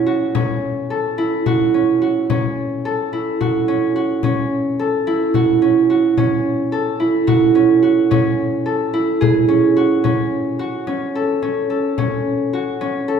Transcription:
Already playing: C#4 E4 A4
0.06 F#4
0.35 C#4, frame drum
0.90 A4, frame drum
1.18 E4
1.46 F#4, frame drum
1.74 C#4
2.02 F#4
2.30 C#4, frame drum
2.85 A4, frame drum
3.13 E4, frame drum
3.41 F#4, frame drum
3.68 C#4
3.96 F#4
4.23 C#4, frame drum
4.79 A4
5.07 E4
5.34 F#4, frame drum
5.62 C#4
5.90 F#4
6.17 C#4, frame drum
6.72 A4
7.00 E4, frame drum
7.27 F#4, frame drum
7.55 C#4
7.82 F#4
8.11 C#4, frame drum
8.66 A4, frame drum
8.94 E4
9.21 G#4, frame drum
9.48 C#4
9.76 F#4, frame drum
10.04 C#4, frame drum
10.59 F#4
10.87 C#4, frame drum
11.15 A4
11.42 C#4, frame drum
11.70 A4
11.98 C#4, frame drum
12.53 F#4
12.81 C#4, frame drum
13.08 A4

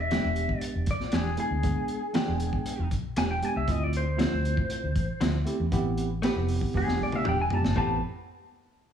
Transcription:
Already playing: E1 E5
0.10 E3 G#3 B3 D4 G4, snare, closed hi-hat
0.24 E1
0.36 closed hi-hat
0.49 kick
0.60 D5, closed hi-hat
0.75 E1
0.86 B1, kick, closed hi-hat
0.91 D5
1.00 snare
1.12 E1 E3 G#3 D4 G4 G#4, snare, closed hi-hat
1.37 G#3 B3 D4 E4 G#4, closed hi-hat
1.50 D2
1.63 G#3 B3 D4 G#4, kick, closed hi-hat
1.88 closed hi-hat
2.13 E3 G#3 B3 D4 G4 G5, snare, closed hi-hat
2.28 E1
2.40 closed hi-hat
2.53 kick
2.66 closed hi-hat
2.79 E1
2.91 B1, kick, closed hi-hat
3.16 E1 E3 G#3 D4 G4 G#5, snare, closed hi-hat
3.31 G5
3.42 G#3 B3 D4 G4 G#5, closed hi-hat
3.56 C#2 E5
3.68 D2 A3 C4 E4 F4 D#5, kick, closed hi-hat
3.84 D5
3.93 C5, closed hi-hat
4.17 D3 F3 A3 C4 E4 F4, snare, closed hi-hat
4.23 C5
4.33 D2
4.45 closed hi-hat
4.57 kick
4.70 closed hi-hat
4.84 D2
4.96 A1, kick, closed hi-hat
5.21 D2 D3 F3 C4 E4, snare, closed hi-hat
5.45 A3 C4 E4 G4, closed hi-hat
5.60 E2
5.72 A1 B3 C4 E4 G4, kick, closed hi-hat
5.98 closed hi-hat
6.22 A3 B3 C4 E4 G4 B4, snare, closed hi-hat
6.36 F1
6.48 open hi-hat
6.61 kick
6.74 E1 G#3 B3 D4 G4 G#4, kick
6.86 E1, snare
6.99 B1
7.03 D5
7.12 E5, mid tom
7.24 E1 E3 G#3 D4 G4, mid tom
7.29 G5
7.41 G#5
7.50 G#3 B3 D4 G4 A5, floor tom
7.63 G1, snare
7.76 A1 A3 B3 C4 E4 G4 B4 A5, kick

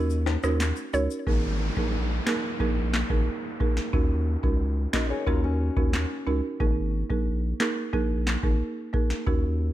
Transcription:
Already playing: D#2 C#4 D#4 F#4 A#4
0.10 shaker
0.26 snare, high timbale
0.43 D#2 C#4 D#4 F#4 A#4, cross-stick, shaker
0.60 snare, clap, closed hi-hat, shaker
0.76 shaker
0.93 C#2 C#4 D#4 F#4 A#4 C#5, shaker
1.11 shaker
1.27 G#1 A#3 D#4 G#4 A#4, kick, downlifter
1.77 A#1 A#3 D#4 G#4 A#4, kick
2.27 A#3 D#4 G#4 A#4, snare, clap
2.60 A#1 A#3 D#4 G#4 A#4, kick
2.94 snare, clap
3.10 G#1 A#3 D#4 G#4 A#4, kick
3.60 A#3 D#4 G#4 A#4, kick
3.77 snare
3.93 D#2 C#4 D#4 F#4 A#4, kick
4.43 C#2 C#4 D#4 F#4 A#4, kick
4.93 C#4 D#4 F#4 A#4 D#5, kick, snare, clap
5.10 G#4 C#5
5.27 D#2 C#4 D#4 F4 F#4 A#4, kick
5.44 C#4 F#4
5.77 D#2 C#4 D#4 F#4 A#4, kick
5.94 snare, clap
6.27 C#2 C#4 D#4 F#4 A#4
6.60 G#1 A#3 D#4 G#4 A#4, kick
7.10 A#1 A#3 D#4 G#4 A#4, kick
7.60 A#3 D#4 G#4 A#4, snare, clap
7.93 A#1 A#3 D#4 G#4 A#4, kick
8.27 snare, clap
8.43 G#1 A#3 D#4 G#4 A#4, kick
8.93 A#3 D#4 G#4 A#4, kick
9.10 snare
9.27 D#2 C#4 D#4 F#4 A#4, kick

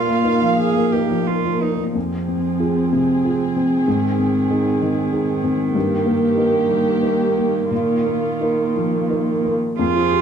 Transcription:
Already playing: A#2 A#3 F4 F5
0.07 A#3
0.24 D#4 A#4
0.42 F3
0.58 G#4
0.76 A#3
0.93 D#4 G4 A#4
1.11 F3
1.28 A#3 F4
1.45 F3
1.61 D#4 A#4
1.79 A#3
1.93 F2 F3 C4 G#4
2.28 C4
2.60 F4 G#4
2.92 C3
3.24 F4 G#4
3.56 C4
3.88 G#2 D#3
4.19 C4
4.50 D#4 G#4
4.82 D#3
5.12 D#4 G#4
5.44 C4
5.75 G2 A#3 G4
6.06 A#3
6.37 D#4 A#4
6.69 G3
7.02 D#4 A#4
7.37 A#3
7.71 A#2 D#3 F4
8.06 A#3
8.41 D#4 A#4
8.76 F3
9.10 D#4 A#4
9.45 A#3
9.79 F2 F4 G#4 C5
9.96 F4
10.12 G4

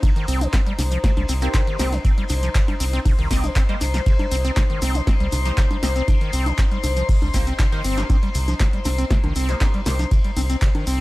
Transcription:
Already playing: D#4 C5 A#5
0.03 C3, kick, closed hi-hat, ride, high conga, shekere
0.16 D#3, closed hi-hat
0.28 C2 C4, open hi-hat, ride, shekere
0.41 D#3, closed hi-hat, high conga, shekere
0.53 C4, kick, snare, clap, closed hi-hat, ride, shekere
0.67 G3, closed hi-hat
0.79 C2 C3, snare, open hi-hat, ride, high conga, shekere
0.91 F3, closed hi-hat, shekere
1.04 C3, kick, snare, closed hi-hat, ride, shekere
1.12 C6
1.17 C2 G3, closed hi-hat, high conga
1.29 C2 C4, open hi-hat, ride, shekere
1.41 A#3 C4 D#4 G4 C5, closed hi-hat, shekere
1.54 C3, kick, snare, clap, closed hi-hat, ride, high conga, shekere
1.67 D#3, closed hi-hat
1.79 C2 A#3 C4 D#4 G4 C5, snare, open hi-hat, ride, shekere
1.92 D#3, snare, closed hi-hat, high conga, shekere
2.04 C4, kick, closed hi-hat, ride, shekere
2.18 G3, closed hi-hat
2.29 C2 C3, open hi-hat, ride, high conga, shekere
2.43 F3, closed hi-hat, shekere
2.55 C3, kick, snare, clap, closed hi-hat, ride, shekere
2.68 G3, closed hi-hat, high conga
2.80 C2 C4, open hi-hat, ride, shekere
2.93 C4, closed hi-hat, shekere
3.05 C3, kick, closed hi-hat, open hi-hat, high conga, shekere
3.19 C2 D#3, closed hi-hat
3.30 C2 A#3 C4 D#4 G4 D#5, kick, snare, open hi-hat, ride, shekere
3.44 D#3, closed hi-hat, ride, high conga, shekere
3.56 C4, kick, snare, clap, closed hi-hat, ride, shekere
3.69 G3 A#3 D#4 G4 C5, closed hi-hat
3.81 C2 C3, open hi-hat, ride, high conga, shekere
3.94 F3, snare, closed hi-hat, shekere
4.06 C3, kick, closed hi-hat, ride, shekere
4.19 G3, closed hi-hat, high conga
4.31 C2 C4, open hi-hat, ride, shekere
4.45 C4, closed hi-hat, shekere
4.56 C3, kick, snare, clap, closed hi-hat, high conga, shekere
4.70 D#3, closed hi-hat
4.82 C2 C4, snare, open hi-hat, ride, shekere
4.94 D#3, closed hi-hat, high conga, shekere
5.07 C4, kick, snare, closed hi-hat, ride, shekere
5.20 C2 G3, closed hi-hat
5.32 C2 C3, open hi-hat, ride, high conga, shekere
5.45 F3 A#3 D#4 G4 C5, closed hi-hat, shekere
5.57 C3, kick, snare, clap, closed hi-hat, ride, shekere
5.71 G3, closed hi-hat, high conga
5.83 C2 A#3 C4 D#4 G4 C5, snare, open hi-hat, ride, shekere
5.96 C4, snare, closed hi-hat, shekere
6.08 C3, kick, closed hi-hat, ride, high conga, shekere
6.21 D#3, closed hi-hat
6.33 C2 C4, open hi-hat, ride, shekere
6.46 D#3, closed hi-hat, high conga, shekere
6.58 C4, kick, snare, clap, closed hi-hat, ride, shekere
6.71 G3, closed hi-hat
6.84 C2 C3, open hi-hat, ride, high conga, shekere
6.96 F3, closed hi-hat, shekere
7.09 C3, kick, closed hi-hat, open hi-hat, shekere
7.22 C2 G3, closed hi-hat, high conga
7.34 C2 A#3 C4 D#4 G4 C5, kick, snare, open hi-hat, ride, shekere
7.47 C4, closed hi-hat, ride, shekere
7.59 C3, kick, snare, clap, closed hi-hat, ride, high conga, shekere
7.72 D#3 A#3 D#4 G4 C5, closed hi-hat
7.84 G1 C4, open hi-hat, ride, shekere
7.97 D#3 A#3 D#4 G4 C5, snare, closed hi-hat, high conga, shekere
8.09 C4, kick, closed hi-hat, ride, high conga, shekere
8.23 G3, closed hi-hat
8.34 C2 C3, open hi-hat, ride, shekere
8.48 F3, closed hi-hat, high conga, shekere
8.60 C3, kick, snare, clap, closed hi-hat, ride, shekere
8.73 G3, closed hi-hat
8.85 C2 C4, snare, open hi-hat, ride, high conga, shekere
8.98 C4, closed hi-hat, shekere
9.10 C3, kick, snare, closed hi-hat, ride, shekere
9.24 C2 D#3, closed hi-hat, high conga
9.36 C2 C4, open hi-hat, ride, shekere
9.49 D#3 A#3 D#4 G4 C5, closed hi-hat, shekere
9.61 C4, kick, snare, clap, closed hi-hat, ride, high conga, shekere
9.74 G3, closed hi-hat
9.86 C2 C3 A#3 D#4 G4 C5, snare, open hi-hat, ride, shekere
9.99 F3, snare, closed hi-hat, high conga, shekere
10.11 C3, kick, closed hi-hat, ride, shekere
10.24 G3, closed hi-hat
10.36 C2 C4, open hi-hat, ride, high conga, shekere
10.50 C4, closed hi-hat, shekere
10.61 C3, kick, snare, clap, closed hi-hat, ride, shekere
10.75 D#3, closed hi-hat, high conga
10.87 C2 C4, open hi-hat, ride, shekere

